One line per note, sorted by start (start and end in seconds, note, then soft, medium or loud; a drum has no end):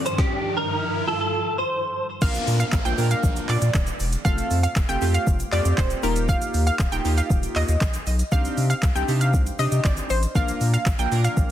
0.00 0.16 G2 medium
0.00 0.16 D#3 medium
0.00 0.16 F3 medium
0.00 riser medium
0.06 0.19 C5 medium
0.06 closed hi-hat medium
0.06 shaker soft
0.06 shaker medium
0.18 0.54 G4 medium
0.18 kick loud
0.18 snare medium
0.57 1.07 A#4 medium
1.08 1.19 A4 medium
1.20 1.56 A4 medium
1.58 2.06 C5 medium
2.21 2.38 A#1 loud
2.21 2.63 A#3 medium
2.21 2.63 D4 medium
2.21 2.63 F4 medium
2.21 2.63 A#4 medium
2.21 2.44 F5 loud
2.21 kick loud
2.21 crash loud
2.21 downlifter medium
2.21 shaker medium
2.34 closed hi-hat medium
2.34 shaker medium
2.47 2.64 A#2 loud
2.47 open hi-hat medium
2.47 shaker medium
2.60 2.71 F5 medium
2.60 closed hi-hat medium
2.60 shaker soft
2.60 shaker medium
2.72 2.81 A#1 loud
2.72 kick loud
2.72 clap loud
2.72 shaker medium
2.85 2.94 A#1 loud
2.85 2.93 A#3 medium
2.85 2.94 D4 medium
2.85 2.94 F4 medium
2.85 2.94 C5 medium
2.85 2.97 G5 medium
2.85 closed hi-hat medium
2.85 shaker medium
2.98 3.15 A#2 loud
2.98 3.64 A#3 medium
2.98 3.64 D4 medium
2.98 3.64 F4 medium
2.98 3.64 A#4 medium
2.98 open hi-hat medium
2.98 shaker medium
3.11 3.22 F5 medium
3.11 closed hi-hat medium
3.11 shaker soft
3.11 shaker medium
3.23 3.40 A#1 loud
3.23 kick loud
3.23 shaker medium
3.36 closed hi-hat medium
3.36 shaker medium
3.49 3.57 A#2 loud
3.49 3.85 D5 medium
3.49 clap medium
3.49 open hi-hat medium
3.49 shaker medium
3.62 3.70 A#2 loud
3.62 closed hi-hat medium
3.62 shaker medium
3.74 3.91 D#1 medium
3.74 kick loud
3.74 clap loud
3.74 shaker medium
3.87 closed hi-hat medium
3.87 shaker medium
4.00 4.16 E1 loud
4.00 open hi-hat medium
4.00 shaker medium
4.13 closed hi-hat medium
4.13 shaker medium
4.13 shaker soft
4.25 4.42 F1 loud
4.25 4.66 A3 medium
4.25 4.67 C4 medium
4.25 4.67 F4 medium
4.25 4.67 A4 medium
4.25 4.48 F5 loud
4.25 kick loud
4.25 shaker medium
4.38 closed hi-hat medium
4.38 shaker medium
4.51 4.67 F2 loud
4.51 open hi-hat medium
4.51 shaker medium
4.63 4.75 F5 medium
4.63 closed hi-hat medium
4.63 shaker soft
4.63 shaker medium
4.76 4.84 F1 loud
4.76 kick loud
4.76 clap loud
4.76 shaker medium
4.89 4.97 F1 loud
4.89 4.97 A3 medium
4.89 4.97 C4 medium
4.89 4.97 F4 medium
4.89 4.97 G4 medium
4.89 5.00 G5 medium
4.89 closed hi-hat medium
4.89 shaker medium
5.01 5.18 F2 loud
5.01 5.35 A3 medium
5.01 5.35 C4 medium
5.01 5.35 F4 medium
5.01 5.35 G4 medium
5.01 open hi-hat medium
5.01 shaker medium
5.14 5.26 F5 medium
5.14 closed hi-hat medium
5.14 shaker medium
5.27 5.43 F1 loud
5.27 kick loud
5.27 shaker medium
5.40 closed hi-hat medium
5.40 shaker medium
5.52 5.61 F2 loud
5.52 6.02 A3 medium
5.52 6.02 C4 medium
5.52 6.02 F4 medium
5.52 6.02 G4 medium
5.52 5.75 D5 medium
5.52 clap medium
5.52 open hi-hat medium
5.52 shaker medium
5.65 5.73 F2 loud
5.65 closed hi-hat medium
5.65 shaker medium
5.78 5.94 D1 medium
5.78 5.89 C5 medium
5.78 kick loud
5.78 clap loud
5.78 shaker medium
5.90 closed hi-hat medium
5.90 shaker medium
6.03 6.36 D#1 loud
6.03 6.74 A#3 medium
6.03 6.74 D#4 medium
6.03 6.74 F4 medium
6.03 6.74 G4 medium
6.03 6.15 A#4 medium
6.03 open hi-hat medium
6.03 shaker medium
6.16 closed hi-hat medium
6.16 shaker soft
6.16 shaker medium
6.29 6.51 F5 loud
6.29 kick loud
6.29 shaker medium
6.41 closed hi-hat medium
6.41 shaker medium
6.54 6.71 D#2 loud
6.54 open hi-hat medium
6.54 shaker medium
6.67 6.78 F5 medium
6.67 closed hi-hat medium
6.67 shaker soft
6.67 shaker medium
6.79 6.88 D#1 loud
6.79 kick loud
6.79 clap loud
6.79 shaker medium
6.92 7.00 D#1 loud
6.92 7.00 A#3 medium
6.92 7.00 D#4 medium
6.92 7.00 F4 medium
6.92 7.01 G4 medium
6.92 7.03 G5 medium
6.92 closed hi-hat medium
6.92 shaker medium
7.05 7.21 D#2 loud
7.05 7.71 A#3 medium
7.05 7.71 D#4 medium
7.05 7.71 F4 medium
7.05 7.71 G4 medium
7.05 open hi-hat medium
7.05 shaker medium
7.18 7.29 F5 medium
7.18 closed hi-hat medium
7.18 shaker medium
7.30 7.47 D#1 loud
7.30 kick loud
7.30 shaker medium
7.43 closed hi-hat medium
7.43 shaker medium
7.56 7.64 D#2 loud
7.56 7.92 D#5 medium
7.56 clap medium
7.56 open hi-hat medium
7.56 shaker soft
7.68 7.77 D#2 loud
7.68 closed hi-hat medium
7.68 shaker medium
7.81 7.98 A#1 medium
7.81 kick loud
7.81 clap loud
7.81 shaker medium
7.94 closed hi-hat medium
7.94 shaker medium
8.06 8.23 B1 loud
8.06 open hi-hat medium
8.06 shaker medium
8.19 closed hi-hat medium
8.19 shaker soft
8.19 shaker medium
8.32 8.48 C2 loud
8.32 8.73 C4 medium
8.32 8.73 D4 medium
8.32 8.73 D#4 medium
8.32 8.73 G4 medium
8.32 8.55 F5 loud
8.32 kick loud
8.32 shaker medium
8.44 closed hi-hat medium
8.44 shaker medium
8.57 8.74 C3 loud
8.57 open hi-hat medium
8.57 shaker medium
8.70 8.81 F5 medium
8.70 closed hi-hat medium
8.70 shaker soft
8.70 shaker medium
8.83 8.91 C2 loud
8.83 kick loud
8.83 clap loud
8.83 shaker medium
8.95 9.04 C2 loud
8.95 9.04 C4 medium
8.95 9.04 D4 medium
8.95 9.04 D#4 medium
8.95 9.04 G4 medium
8.95 9.07 G5 medium
8.95 closed hi-hat medium
8.95 shaker medium
9.08 9.35 C3 medium
9.08 9.41 C4 medium
9.08 9.41 D4 medium
9.08 9.41 D#4 medium
9.08 9.41 G4 medium
9.08 open hi-hat medium
9.08 shaker medium
9.21 9.32 F5 medium
9.21 closed hi-hat medium
9.21 shaker medium
9.34 9.50 C2 loud
9.34 kick loud
9.34 shaker medium
9.46 closed hi-hat medium
9.46 shaker medium
9.59 9.67 C3 loud
9.59 10.09 C4 medium
9.59 10.09 D4 medium
9.59 10.09 D#4 medium
9.59 10.09 G4 medium
9.59 9.82 D#5 medium
9.59 open hi-hat medium
9.59 shaker medium
9.72 9.80 C3 loud
9.72 closed hi-hat medium
9.72 shaker medium
9.84 10.01 G#1 loud
9.84 9.96 D5 medium
9.84 kick loud
9.84 clap loud
9.84 shaker medium
9.97 closed hi-hat medium
9.97 shaker medium
10.10 10.26 A1 loud
10.10 10.21 C5 medium
10.10 open hi-hat medium
10.10 shaker medium
10.23 closed hi-hat medium
10.23 shaker medium
10.23 shaker soft
10.35 10.52 A#1 loud
10.35 11.51 D3 medium
10.35 11.51 F3 medium
10.35 10.77 A#3 medium
10.35 11.51 A#3 medium
10.35 10.77 D4 medium
10.35 10.77 F4 medium
10.35 10.77 A#4 medium
10.35 10.58 F5 loud
10.35 kick loud
10.35 shaker medium
10.48 closed hi-hat medium
10.48 shaker medium
10.61 10.77 A#2 loud
10.61 open hi-hat medium
10.61 shaker medium
10.73 10.85 F5 medium
10.73 closed hi-hat medium
10.73 shaker soft
10.73 shaker medium
10.86 10.95 A#1 loud
10.86 kick loud
10.86 clap loud
10.86 shaker medium
10.99 11.07 A#1 loud
10.99 11.07 A#3 medium
10.99 11.07 D4 medium
10.99 11.07 F4 medium
10.99 11.07 A#4 medium
10.99 11.10 G5 medium
10.99 closed hi-hat medium
10.99 shaker medium
11.11 11.28 A#2 loud
11.11 11.51 A#3 medium
11.11 11.51 D4 medium
11.11 11.51 F4 medium
11.11 11.51 A#4 medium
11.11 open hi-hat medium
11.11 shaker medium
11.24 11.36 F5 medium
11.24 closed hi-hat medium
11.24 shaker medium
11.37 11.51 A#1 loud
11.37 kick loud
11.37 shaker medium